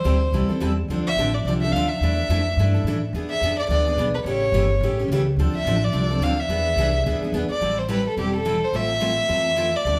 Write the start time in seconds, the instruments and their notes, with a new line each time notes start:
Already playing: violin C5
0.04 upright bass D2, steel-string acoustic guitar E3 G3 C4 E4 A4
0.32 upright bass C2, steel-string acoustic guitar E3 G3 C4 E4 A4
0.49 steel-string acoustic guitar C4 E4 A4, muted upright bass stroke
0.60 upright bass E2, steel-string acoustic guitar E3 G3 C4 E4 A4
0.88 upright bass D2, steel-string acoustic guitar D3 F3 C4 D4 A4
1.07 violin E5
1.16 upright bass A1, steel-string acoustic guitar D3 F3 C4 D4 A4
1.34 violin D5
1.45 upright bass C2, steel-string acoustic guitar D3 F3 C4 D4, violin D5
1.49 steel-string acoustic guitar A4
1.62 steel-string acoustic guitar D4 A4, violin E5
1.66 steel-string acoustic guitar C4
1.72 upright bass D2, steel-string acoustic guitar D3 F3, violin F5
1.76 steel-string acoustic guitar C4 D4 A4
1.88 violin E5
2.01 upright bass E2, steel-string acoustic guitar E3 A3 D4 E4 A4
2.29 upright bass F2, steel-string acoustic guitar E3 A3 D4 E4 A4
2.57 upright bass G2, steel-string acoustic guitar E3 A3 D4 E4 A4
2.74 steel-string acoustic guitar D4 E4 A4
2.84 upright bass A2, steel-string acoustic guitar E3 A3
2.88 steel-string acoustic guitar D4 E4 A4
3.13 upright bass E2, steel-string acoustic guitar E3 B3 D4 G#4
3.30 violin E5
3.41 upright bass F2, steel-string acoustic guitar E3 B3 D4 G#4
3.59 violin D5
3.69 upright bass D2, steel-string acoustic guitar E3 B3 D4 G#4, violin D5
3.87 steel-string acoustic guitar B3 D4 G#4
3.96 upright bass B1, steel-string acoustic guitar E3 B3 D4 G#4
4.14 violin B4
4.24 upright bass A1, steel-string acoustic guitar C#3 E3 A3 C#4 G4, violin C#5
4.52 upright bass G1, steel-string acoustic guitar C#3 E3 A3 C#4 G4
4.81 upright bass A1, steel-string acoustic guitar C#3 E3 A3 C#4 G4
4.99 steel-string acoustic guitar A3 C#4 G4
5.08 upright bass C#2, steel-string acoustic guitar C#3 E3
5.12 steel-string acoustic guitar A3 C#4 G4
5.36 upright bass D2, steel-string acoustic guitar D3 F3 C4 D4 A4
5.55 violin E5
5.65 upright bass A1, steel-string acoustic guitar D3 F3 C4 D4 A4
5.84 violin D5
5.92 upright bass C2, steel-string acoustic guitar D3 F3 C4 D4 A4
6.11 steel-string acoustic guitar C4 D4 A4
6.20 upright bass D2, steel-string acoustic guitar D3 F3 C4 D4 A4, violin F5
6.40 violin E5
6.48 upright bass E2, steel-string acoustic guitar E3 B3 D4 G#4
6.76 upright bass C2, steel-string acoustic guitar E3 B3 D4 G#4
7.04 upright bass D2, steel-string acoustic guitar E3 B3 D4 G#4
7.20 steel-string acoustic guitar D4 G#4, muted upright bass stroke
7.24 steel-string acoustic guitar B3
7.32 upright bass E2, steel-string acoustic guitar E3 B3 D4 G#4
7.49 violin D5, muted upright bass stroke
7.61 upright bass A1, steel-string acoustic guitar E3 G3 C4 E4 A4
7.79 violin C5
7.88 steel-string acoustic guitar E3 G3 C4 E4 A4, violin B4
8.08 violin A4
8.17 upright bass E1, steel-string acoustic guitar E3 G3 C4 E4 A4, violin G4
8.37 violin A4
8.45 steel-string acoustic guitar E3 G3 C4 E4 A4
8.64 violin C5
8.73 upright bass A1, steel-string acoustic guitar E3 A3 C4 F4 A4, violin E5
9.00 steel-string acoustic guitar E3 A3 C4 F4 A4
9.28 upright bass F2, steel-string acoustic guitar E3 A3 C4 F4 A4
9.56 steel-string acoustic guitar E3 A3 C4 F4 A4
9.76 violin D5
9.85 upright bass D2, steel-string acoustic guitar D3 F3 C4 D4 A4